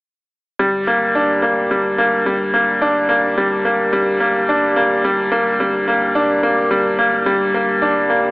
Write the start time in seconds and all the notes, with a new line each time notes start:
0.59 G1 G3
0.87 A#3
1.15 D4
1.42 A#3
1.71 G3
1.98 A#3
2.26 G3
2.54 A#3
2.82 D4
3.09 A#3
3.38 G3
3.65 A#3
3.93 G3
4.20 A#3
4.49 D4
4.76 A#3
5.04 G3
5.32 A#3
5.60 G3
5.88 A#3
6.15 D4
6.43 A#3
6.71 G3
6.99 A#3
7.26 G3
7.54 A#3
7.82 D4
8.10 A#3